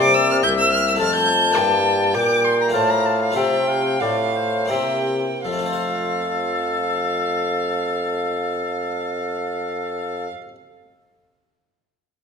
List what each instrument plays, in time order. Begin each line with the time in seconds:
Already playing: harpsichord C3 A#3 E4 G4, bassoon C3, oboe D5
0.01 violin D6
0.14 violin E6
0.31 violin F6
0.43 harpsichord C2, bassoon C2, oboe E5, violin G6
0.59 violin E6
0.72 violin F6
0.88 violin E6
0.95 harpsichord A3 F4 A4
1.00 harpsichord F2, bassoon F2, oboe A5, violin F6
1.15 violin G6
1.51 harpsichord A#3 E4 G4
1.56 harpsichord G2, bassoon G2, violin G5
2.13 harpsichord A#2, bassoon A#2, oboe G5, violin D6
2.44 violin C6
2.61 violin A#5
2.68 harpsichord A3 F4 C5
2.73 harpsichord A2, bassoon A2, oboe F5, violin A5
2.90 violin A#5
3.05 violin A5
3.22 violin F5
3.30 harpsichord A3 F4 C5
3.35 bassoon C3, harpsichord C3, oboe E5, violin G5
3.68 oboe F5
4.00 bassoon A2, harpsichord A2, oboe D5, violin F5
4.36 oboe C5
4.66 harpsichord A#3 E4 C5
4.70 harpsichord C3, bassoon C3, oboe E5, violin G5
5.45 bassoon F2, harpsichord F3, oboe A4, violin F5
5.52 harpsichord A3
5.59 harpsichord F4
5.66 harpsichord C5
5.73 harpsichord F5